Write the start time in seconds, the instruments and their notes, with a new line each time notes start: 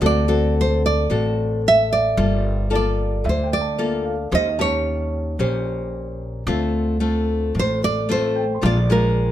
Already playing: grand piano C5 D5 E5 G5
0.01 upright bass D2, nylon-string guitar D3 C4 F#4 A4
0.06 nylon-string guitar D5
0.28 nylon-string guitar C4 F#4 A4
0.61 nylon-string guitar C5
0.86 nylon-string guitar D5
1.10 upright bass A1, nylon-string guitar A2 C4 F#4 A4
1.68 nylon-string guitar E5
1.93 nylon-string guitar D5
2.17 upright bass G1, nylon-string guitar G3 A#3 F4 A4
2.70 nylon-string guitar A#3 F4 A4, grand piano D5
2.75 nylon-string guitar D5
3.24 upright bass D2, nylon-string guitar D3, grand piano E5
3.29 nylon-string guitar C5
3.43 grand piano G5
3.53 nylon-string guitar D5
3.61 grand piano A5
3.78 nylon-string guitar A#3 F4 A4
4.05 grand piano F5
4.31 upright bass D#2, nylon-string guitar D#3 C#4 G4 C5 D#5
4.59 nylon-string guitar C#4 G4 C#5, grand piano A5
5.39 upright bass A#1, nylon-string guitar A#2 C#4 G4 C5
6.47 upright bass D2, nylon-string guitar D3 A3 C4 F4
7.00 nylon-string guitar A3 C4 F4
7.55 upright bass A1, nylon-string guitar A2
7.59 nylon-string guitar C5
7.84 nylon-string guitar D5
8.09 nylon-string guitar A3 C4 F4 C5
8.36 grand piano G5
8.55 grand piano C6
8.61 upright bass A#1, nylon-string guitar A#2 G#3 D4 F4
8.66 nylon-string guitar D5
8.90 nylon-string guitar G#3 D4 F4 A#4